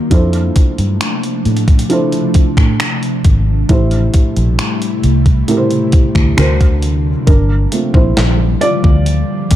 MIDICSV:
0, 0, Header, 1, 6, 480
1, 0, Start_track
1, 0, Tempo, 895522
1, 59, Time_signature, 4, 2, 24, 8
1, 5124, End_track
2, 0, Start_track
2, 0, Title_t, "Felt piano"
2, 0, Program_c, 0, 0
2, 0, Control_c, 0, 64, 127
2, 0, Note_on_c, 0, 51, 80
2, 0, Note_on_c, 0, 63, 77
2, 0, Note_on_c, 0, 65, 75
2, 0, Note_on_c, 0, 66, 80
2, 0, Note_on_c, 0, 73, 94
2, 55, Note_on_c, 0, 53, 80
2, 59, Note_on_c, 0, 62, 72
2, 63, Note_on_c, 0, 64, 77
2, 67, Note_off_c, 0, 65, 0
2, 67, Control_c, 0, 64, 0
2, 67, Note_on_c, 0, 69, 77
2, 69, Note_off_c, 0, 51, 0
2, 69, Note_off_c, 0, 66, 0
2, 70, Note_off_c, 0, 63, 0
2, 71, Note_off_c, 0, 73, 0
2, 72, Note_on_c, 0, 72, 89
2, 161, Control_c, 0, 64, 127
2, 774, Note_off_c, 0, 53, 0
2, 776, Note_off_c, 0, 62, 0
2, 778, Note_off_c, 0, 64, 0
2, 780, Note_off_c, 0, 69, 0
2, 783, Note_off_c, 0, 72, 0
2, 1016, Note_on_c, 0, 53, 84
2, 1020, Note_on_c, 0, 62, 74
2, 1023, Note_on_c, 0, 64, 75
2, 1028, Note_on_c, 0, 69, 76
2, 1031, Note_on_c, 0, 72, 89
2, 1735, Note_off_c, 0, 53, 0
2, 1737, Note_off_c, 0, 62, 0
2, 1738, Note_off_c, 0, 64, 0
2, 1741, Note_off_c, 0, 69, 0
2, 1743, Note_off_c, 0, 72, 0
2, 1976, Note_on_c, 0, 45, 83
2, 1980, Note_on_c, 0, 57, 74
2, 1984, Note_on_c, 0, 64, 77
2, 1987, Control_c, 0, 64, 0
2, 1988, Note_on_c, 0, 67, 75
2, 1992, Note_on_c, 0, 72, 94
2, 2081, Control_c, 0, 64, 127
2, 2695, Note_off_c, 0, 45, 0
2, 2697, Note_off_c, 0, 57, 0
2, 2699, Note_off_c, 0, 64, 0
2, 2701, Note_off_c, 0, 67, 0
2, 2703, Note_off_c, 0, 72, 0
2, 2936, Note_on_c, 0, 45, 77
2, 2939, Note_on_c, 0, 57, 71
2, 2943, Note_on_c, 0, 64, 74
2, 2947, Note_on_c, 0, 67, 70
2, 2951, Note_on_c, 0, 70, 67
2, 2980, Note_off_c, 0, 70, 0
2, 2986, Note_on_c, 0, 72, 90
2, 3414, Note_on_c, 0, 50, 83
2, 3417, Note_off_c, 0, 45, 0
2, 3418, Note_on_c, 0, 62, 74
2, 3419, Note_off_c, 0, 57, 0
2, 3421, Note_off_c, 0, 64, 0
2, 3422, Note_off_c, 0, 72, 0
2, 3422, Note_on_c, 0, 66, 73
2, 3423, Note_off_c, 0, 67, 0
2, 3425, Control_c, 0, 64, 0
2, 3426, Note_on_c, 0, 70, 76
2, 3430, Note_on_c, 0, 72, 86
2, 3523, Control_c, 0, 64, 127
2, 3800, Note_off_c, 0, 50, 0
2, 3803, Note_off_c, 0, 62, 0
2, 3804, Note_off_c, 0, 66, 0
2, 3807, Note_off_c, 0, 70, 0
2, 3809, Note_off_c, 0, 72, 0
2, 3895, Note_on_c, 0, 70, 85
2, 3907, Control_c, 0, 64, 0
2, 3908, Note_on_c, 0, 62, 68
2, 4003, Control_c, 0, 64, 127
2, 4139, Note_on_c, 0, 57, 58
2, 4141, Note_on_c, 0, 58, 52
2, 4144, Note_on_c, 0, 60, 51
2, 4146, Note_on_c, 0, 65, 60
2, 4235, Note_off_c, 0, 70, 0
2, 4242, Note_off_c, 0, 62, 0
2, 4255, Note_on_c, 0, 72, 94
2, 4267, Note_on_c, 0, 64, 72
2, 4458, Note_off_c, 0, 57, 0
2, 4459, Note_off_c, 0, 58, 0
2, 4460, Note_off_c, 0, 60, 0
2, 4462, Note_off_c, 0, 65, 0
2, 4601, Note_off_c, 0, 64, 0
2, 4615, Note_on_c, 0, 74, 107
2, 4627, Note_on_c, 0, 65, 83
2, 4628, Note_off_c, 0, 72, 0
2, 5075, Note_off_c, 0, 74, 0
2, 5081, Note_off_c, 0, 65, 0
2, 5124, End_track
3, 0, Start_track
3, 0, Title_t, "Ambient pad"
3, 0, Program_c, 1, 92
3, 58, Note_on_c, 1, 57, 69
3, 59, Note_on_c, 1, 48, 84
3, 59, Note_on_c, 1, 53, 71
3, 60, Note_on_c, 1, 62, 88
3, 1959, Note_off_c, 1, 57, 0
3, 1960, Note_off_c, 1, 48, 0
3, 1960, Note_off_c, 1, 53, 0
3, 1960, Note_off_c, 1, 62, 0
3, 1978, Note_on_c, 1, 48, 83
3, 1978, Note_on_c, 1, 55, 71
3, 1978, Note_on_c, 1, 57, 73
3, 1978, Note_on_c, 1, 64, 91
3, 3404, Note_off_c, 1, 55, 0
3, 3404, Note_off_c, 1, 57, 0
3, 3404, Note_off_c, 1, 64, 0
3, 3879, Note_off_c, 1, 48, 0
3, 3900, Note_on_c, 1, 53, 85
3, 3900, Note_on_c, 1, 55, 74
3, 3901, Note_on_c, 1, 50, 78
3, 5124, Note_off_c, 1, 50, 0
3, 5124, Note_off_c, 1, 53, 0
3, 5124, Note_off_c, 1, 55, 0
3, 5124, End_track
4, 0, Start_track
4, 0, Title_t, "Fingered electric bass"
4, 0, Program_c, 2, 33
4, 61, Note_on_c, 2, 41, 93
4, 264, Note_off_c, 2, 41, 0
4, 422, Note_on_c, 2, 43, 88
4, 522, Note_off_c, 2, 43, 0
4, 782, Note_on_c, 2, 45, 90
4, 984, Note_off_c, 2, 45, 0
4, 1380, Note_on_c, 2, 45, 73
4, 1481, Note_off_c, 2, 45, 0
4, 1742, Note_on_c, 2, 32, 85
4, 1944, Note_off_c, 2, 32, 0
4, 1981, Note_on_c, 2, 33, 95
4, 2184, Note_off_c, 2, 33, 0
4, 2342, Note_on_c, 2, 34, 86
4, 2442, Note_off_c, 2, 34, 0
4, 2702, Note_on_c, 2, 36, 94
4, 2904, Note_off_c, 2, 36, 0
4, 3299, Note_on_c, 2, 38, 80
4, 3400, Note_off_c, 2, 38, 0
4, 3421, Note_on_c, 2, 38, 99
4, 3827, Note_off_c, 2, 38, 0
4, 3900, Note_on_c, 2, 31, 112
4, 4103, Note_off_c, 2, 31, 0
4, 4258, Note_on_c, 2, 34, 93
4, 4360, Note_off_c, 2, 34, 0
4, 4381, Note_on_c, 2, 34, 85
4, 4584, Note_off_c, 2, 34, 0
4, 4740, Note_on_c, 2, 38, 92
4, 4943, Note_off_c, 2, 38, 0
4, 5101, Note_on_c, 2, 38, 93
4, 5124, Note_off_c, 2, 38, 0
4, 5124, End_track
5, 0, Start_track
5, 0, Title_t, "Muted fingered electric bass strokes"
5, 1262, Note_on_c, 9, 29, 48
5, 1315, Note_off_c, 9, 29, 0
5, 3181, Note_on_c, 9, 29, 48
5, 3234, Note_off_c, 9, 29, 0
5, 5124, End_track
6, 0, Start_track
6, 0, Title_t, "Drums"
6, 59, Note_on_c, 9, 42, 64
6, 60, Note_on_c, 9, 36, 99
6, 113, Note_off_c, 9, 36, 0
6, 113, Note_off_c, 9, 42, 0
6, 178, Note_on_c, 9, 42, 42
6, 231, Note_off_c, 9, 42, 0
6, 299, Note_on_c, 9, 42, 75
6, 301, Note_on_c, 9, 36, 98
6, 352, Note_off_c, 9, 42, 0
6, 355, Note_off_c, 9, 36, 0
6, 421, Note_on_c, 9, 42, 53
6, 474, Note_off_c, 9, 42, 0
6, 540, Note_on_c, 9, 26, 115
6, 540, Note_on_c, 9, 42, 61
6, 594, Note_off_c, 9, 26, 0
6, 594, Note_off_c, 9, 42, 0
6, 662, Note_on_c, 9, 42, 47
6, 715, Note_off_c, 9, 42, 0
6, 779, Note_on_c, 9, 42, 32
6, 833, Note_off_c, 9, 42, 0
6, 839, Note_on_c, 9, 42, 39
6, 893, Note_off_c, 9, 42, 0
6, 899, Note_on_c, 9, 36, 91
6, 899, Note_on_c, 9, 42, 52
6, 953, Note_off_c, 9, 36, 0
6, 953, Note_off_c, 9, 42, 0
6, 959, Note_on_c, 9, 42, 59
6, 1013, Note_off_c, 9, 42, 0
6, 1018, Note_on_c, 9, 42, 60
6, 1071, Note_off_c, 9, 42, 0
6, 1139, Note_on_c, 9, 42, 42
6, 1192, Note_off_c, 9, 42, 0
6, 1256, Note_on_c, 9, 42, 73
6, 1260, Note_on_c, 9, 36, 87
6, 1309, Note_off_c, 9, 42, 0
6, 1314, Note_off_c, 9, 36, 0
6, 1378, Note_on_c, 9, 36, 91
6, 1381, Note_on_c, 9, 26, 68
6, 1431, Note_off_c, 9, 36, 0
6, 1435, Note_off_c, 9, 26, 0
6, 1500, Note_on_c, 9, 26, 113
6, 1501, Note_on_c, 9, 42, 63
6, 1553, Note_off_c, 9, 26, 0
6, 1554, Note_off_c, 9, 42, 0
6, 1622, Note_on_c, 9, 42, 45
6, 1676, Note_off_c, 9, 42, 0
6, 1739, Note_on_c, 9, 42, 60
6, 1741, Note_on_c, 9, 36, 96
6, 1793, Note_off_c, 9, 42, 0
6, 1794, Note_off_c, 9, 36, 0
6, 1979, Note_on_c, 9, 42, 63
6, 1980, Note_on_c, 9, 36, 99
6, 2032, Note_off_c, 9, 42, 0
6, 2033, Note_off_c, 9, 36, 0
6, 2097, Note_on_c, 9, 42, 45
6, 2150, Note_off_c, 9, 42, 0
6, 2217, Note_on_c, 9, 42, 69
6, 2220, Note_on_c, 9, 36, 94
6, 2270, Note_off_c, 9, 42, 0
6, 2274, Note_off_c, 9, 36, 0
6, 2340, Note_on_c, 9, 42, 53
6, 2393, Note_off_c, 9, 42, 0
6, 2459, Note_on_c, 9, 26, 117
6, 2459, Note_on_c, 9, 42, 65
6, 2513, Note_off_c, 9, 26, 0
6, 2513, Note_off_c, 9, 42, 0
6, 2582, Note_on_c, 9, 42, 44
6, 2635, Note_off_c, 9, 42, 0
6, 2699, Note_on_c, 9, 42, 42
6, 2752, Note_off_c, 9, 42, 0
6, 2818, Note_on_c, 9, 36, 89
6, 2818, Note_on_c, 9, 42, 47
6, 2872, Note_off_c, 9, 36, 0
6, 2872, Note_off_c, 9, 42, 0
6, 2938, Note_on_c, 9, 42, 62
6, 2991, Note_off_c, 9, 42, 0
6, 3058, Note_on_c, 9, 42, 44
6, 3112, Note_off_c, 9, 42, 0
6, 3175, Note_on_c, 9, 42, 68
6, 3179, Note_on_c, 9, 36, 96
6, 3229, Note_off_c, 9, 42, 0
6, 3233, Note_off_c, 9, 36, 0
6, 3297, Note_on_c, 9, 36, 90
6, 3300, Note_on_c, 9, 26, 64
6, 3350, Note_off_c, 9, 36, 0
6, 3353, Note_off_c, 9, 26, 0
6, 3418, Note_on_c, 9, 26, 116
6, 3419, Note_on_c, 9, 42, 64
6, 3472, Note_off_c, 9, 26, 0
6, 3473, Note_off_c, 9, 42, 0
6, 3541, Note_on_c, 9, 36, 85
6, 3541, Note_on_c, 9, 42, 46
6, 3594, Note_off_c, 9, 42, 0
6, 3595, Note_off_c, 9, 36, 0
6, 3658, Note_on_c, 9, 42, 64
6, 3712, Note_off_c, 9, 42, 0
6, 3898, Note_on_c, 9, 42, 69
6, 3899, Note_on_c, 9, 36, 111
6, 3952, Note_off_c, 9, 36, 0
6, 3952, Note_off_c, 9, 42, 0
6, 4138, Note_on_c, 9, 42, 73
6, 4191, Note_off_c, 9, 42, 0
6, 4256, Note_on_c, 9, 36, 106
6, 4310, Note_off_c, 9, 36, 0
6, 4379, Note_on_c, 9, 38, 120
6, 4379, Note_on_c, 9, 42, 69
6, 4432, Note_off_c, 9, 42, 0
6, 4433, Note_off_c, 9, 38, 0
6, 4617, Note_on_c, 9, 42, 57
6, 4671, Note_off_c, 9, 42, 0
6, 4738, Note_on_c, 9, 36, 100
6, 4792, Note_off_c, 9, 36, 0
6, 4858, Note_on_c, 9, 42, 66
6, 4911, Note_off_c, 9, 42, 0
6, 5095, Note_on_c, 9, 42, 77
6, 5099, Note_on_c, 9, 36, 97
6, 5124, Note_off_c, 9, 36, 0
6, 5124, Note_off_c, 9, 42, 0
6, 5124, End_track
0, 0, End_of_file